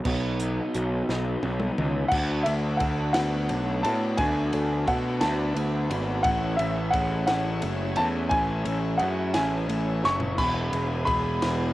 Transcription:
0.04 picked electric bass B1, tonewheel organ C#3 B3 D#4, clean electric guitar B3 D#4 F#4 C#5, overdriven electric guitar B3, kick, crash
0.40 overdriven electric guitar D#4, closed hi-hat
0.75 picked electric bass B1, overdriven electric guitar F#4, closed hi-hat
1.09 picked electric bass B1, overdriven electric guitar D#4, snare
1.43 picked electric bass B1, overdriven electric guitar B3, high tom
1.60 mid tom
1.78 picked electric bass C#2, overdriven electric guitar D#4, mid tom
2.08 picked electric bass D2, clean electric guitar D3, overdriven electric guitar D3 A3, upright piano F#5, kick, crash
2.13 overdriven electric guitar D4 F#4, tonewheel organ F#4 D5 B5
2.43 picked electric bass D2, clean electric guitar A3, upright piano E5, ride
2.77 picked electric bass D2, overdriven electric guitar D3 A3, clean electric guitar A4, upright piano F#5, kick, ride
2.82 overdriven electric guitar D4 F#4
3.13 picked electric bass D2, overdriven electric guitar A3 D4 F#4, clean electric guitar B3, upright piano F#5, snare, ride
3.17 overdriven electric guitar D3
3.49 picked electric bass B1, clean electric guitar A3, ride
3.83 picked electric bass A2, overdriven electric guitar A3 D4 F#4, clean electric guitar B3, upright piano A5, ride
4.17 picked electric bass D2, overdriven electric guitar D3 A3 D4 F#4, clean electric guitar D3, upright piano G#5, kick, ride
4.53 picked electric bass D2, clean electric guitar A3, ride
4.86 picked electric bass B2, overdriven electric guitar D3 A3 D4 F#4, clean electric guitar A4, upright piano F#5, kick, ride
5.20 picked electric bass D2, overdriven electric guitar D3 A3 D4 F#4, clean electric guitar B3, upright piano A5, snare, ride
5.55 picked electric bass D2, clean electric guitar A3, ride
5.90 picked electric bass G#1, overdriven electric guitar A3 D4 F#4, clean electric guitar B3, ride
6.23 picked electric bass A1, overdriven electric guitar A2 E3 A3 C#4 E4, clean electric guitar A2, tonewheel organ E4 C#5 E5, upright piano F#5, kick, ride
6.57 picked electric bass A1, clean electric guitar A3, upright piano E5, ride
6.91 picked electric bass A1, overdriven electric guitar E3 A3, clean electric guitar G#4, upright piano F#5, kick, ride
6.95 overdriven electric guitar C#4 E4
7.27 picked electric bass A1, overdriven electric guitar A2 E3 A3 C#4 E4, clean electric guitar C#4, upright piano F#5, snare, ride
7.61 picked electric bass F#1, clean electric guitar A3, ride
7.96 picked electric bass E2, overdriven electric guitar A3 C#4 E4, clean electric guitar C#4, upright piano A5, ride
8.29 picked electric bass A1, clean electric guitar A2, overdriven electric guitar A2 E3 A3 C#4 E4, upright piano G#5, kick, ride
8.64 picked electric bass A1, clean electric guitar A3, ride
8.97 picked electric bass F#2, overdriven electric guitar E3 A3 C#4, clean electric guitar G#4, upright piano F#5, ride
9.02 overdriven electric guitar E4
9.33 picked electric bass A1, overdriven electric guitar A2 E3 A3 C#4 E4, clean electric guitar C#4, upright piano G#5, snare, ride
9.69 picked electric bass A1, clean electric guitar A3, ride
10.03 picked electric bass F#1, clean electric guitar C#4, overdriven electric guitar C#4 E4, upright piano C#6, snare
10.07 overdriven electric guitar A3
10.20 floor tom
10.35 picked electric bass E1, clean electric guitar E2, overdriven electric guitar E2, tonewheel organ E4 D#5 G#5, upright piano B5, kick, crash
10.40 overdriven electric guitar B2 E3 G#3 B3 E4
10.70 picked electric bass E1, clean electric guitar G#3, ride
11.05 picked electric bass E1, overdriven electric guitar E3 G#3 B3, clean electric guitar G#4, upright piano B5, kick, ride
11.09 overdriven electric guitar E4
11.42 picked electric bass E1, overdriven electric guitar E2 B2 E3 G#3 B3 E4, clean electric guitar B3, snare, ride

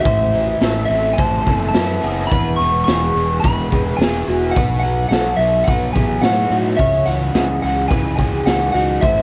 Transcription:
Already playing: distorted electric guitar E3
0.00 lead electric guitar E5
0.05 fingered electric bass A1, distorted electric guitar A2, clean electric guitar C5, kick, open hi-hat
0.33 distorted electric guitar E3, open hi-hat
0.60 fingered electric bass A1, overdriven electric guitar E3, distorted electric guitar A3, clean electric guitar A4, snare, open hi-hat
0.85 overdriven electric guitar C4, distorted electric guitar E4, lead electric guitar E5
0.90 fingered electric bass A1, open hi-hat
1.13 lead electric guitar A5
1.17 fingered electric bass A1, overdriven electric guitar E3, distorted electric guitar C4, clean electric guitar C5, kick, open hi-hat
1.45 fingered electric bass F#1, overdriven electric guitar C4, distorted electric guitar E4, clean electric guitar A4, kick, open hi-hat
1.57 lead electric guitar G#5
1.69 lead electric guitar A5
1.73 fingered electric bass F#2, overdriven electric guitar E4, distorted electric guitar B4, snare, open hi-hat
2.01 fingered electric bass F#1, overdriven electric guitar B3, distorted electric guitar E4, clean electric guitar G#4, open hi-hat
2.27 lead electric guitar B5, open hi-hat
2.31 fingered electric bass E1, overdriven electric guitar E2, distorted electric guitar E3, clean electric guitar B4, kick
2.56 fingered electric bass E1, overdriven electric guitar B2, distorted electric guitar G#3, lead electric guitar C#6, open hi-hat
2.84 distorted electric guitar E3, clean electric guitar G#4, lead electric guitar C#6, open hi-hat
2.88 fingered electric bass E1, snare
3.15 fingered electric bass E1, distorted electric guitar B3, open hi-hat
3.40 overdriven electric guitar E3, clean electric guitar B4, lead electric guitar B5
3.44 fingered electric bass E1, distorted electric guitar G#3, kick, open hi-hat
3.72 distorted electric guitar B3, clean electric guitar G#4, kick, open hi-hat
3.97 fingered electric bass E1, overdriven electric guitar G#4, lead electric guitar G#5
4.01 distorted electric guitar E4, snare, open hi-hat
4.27 fingered electric bass E1, distorted electric guitar B3, overdriven electric guitar E4, clean electric guitar F#4, open hi-hat
4.51 lead electric guitar F#5
4.56 fingered electric bass B1, distorted electric guitar B2, clean electric guitar B4, kick, open hi-hat
4.80 lead electric guitar F#5
4.84 distorted electric guitar F#3, open hi-hat
5.09 fingered electric bass B1, distorted electric guitar B2, overdriven electric guitar F#3, clean electric guitar A4, lead electric guitar F#5, snare, open hi-hat
5.37 fingered electric bass B1, distorted electric guitar B3, lead electric guitar E5, open hi-hat
5.64 fingered electric bass B1, clean electric guitar B4, lead electric guitar F#5, kick, open hi-hat
5.68 distorted electric guitar F#3
5.93 fingered electric bass A1, distorted electric guitar B3, clean electric guitar G#4, lead electric guitar G#5, kick, open hi-hat
6.21 fingered electric bass A2, distorted electric guitar D#4, overdriven electric guitar F#4, lead electric guitar F#5, snare, open hi-hat
6.50 fingered electric bass A2, distorted electric guitar B3, overdriven electric guitar D#4, clean electric guitar F#4, open hi-hat
6.77 fingered electric bass C#2, distorted electric guitar C#3, clean electric guitar C#5, lead electric guitar E5, kick, open hi-hat
7.06 fingered electric bass C#2, distorted electric guitar E3, lead electric guitar F#5, open hi-hat
7.33 fingered electric bass C#2, distorted electric guitar C#3, overdriven electric guitar E3, clean electric guitar G#4, snare, open hi-hat
7.62 fingered electric bass C#2, distorted electric guitar G#3, lead electric guitar F#5, open hi-hat
7.88 fingered electric bass C#2, distorted electric guitar E3, clean electric guitar B4, lead electric guitar G#5, kick, open hi-hat
8.17 distorted electric guitar G#3, clean electric guitar G#4, lead electric guitar G#5, kick, open hi-hat
8.46 fingered electric bass C#2, distorted electric guitar D#4, lead electric guitar F#5, snare, open hi-hat
8.72 fingered electric bass C#2, distorted electric guitar G#3, overdriven electric guitar D#4, clean electric guitar F#4, lead electric guitar F#5, open hi-hat
9.01 fingered electric bass A1, distorted electric guitar A2, clean electric guitar C5, lead electric guitar E5, kick, open hi-hat

